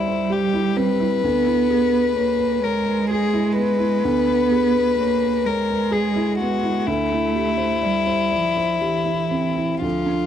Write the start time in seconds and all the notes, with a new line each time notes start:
Already playing: D2 G3 E4 G4 C5 D5
0.08 C5
0.30 G4
0.54 E4
0.77 C4 B4
1.00 E4
1.23 D2 B3
1.47 E4
1.70 G#4
1.93 B4
2.16 A#3 C#5
2.39 B4
2.62 G#3 A#4 C#5
2.86 B4
3.10 G#4
3.33 E4
3.56 B3 B4
3.79 E4
4.04 D2 B3
4.28 B3
4.52 G#4
4.75 B4
4.98 A#3 C#5
5.23 B4
5.45 G#3 A#4 C#5
5.71 B4
5.91 G#4
6.16 E4
6.38 B3 F#4
6.63 E4
6.86 D2 A3 E4
7.12 E4
7.35 G4
7.58 C5
7.82 G3 D5
8.07 C5
8.31 D5
8.36 F3
8.57 C5
8.81 E3 G4
9.06 E4
9.31 C4
9.56 E4
9.82 D2 F3 F4
10.06 D4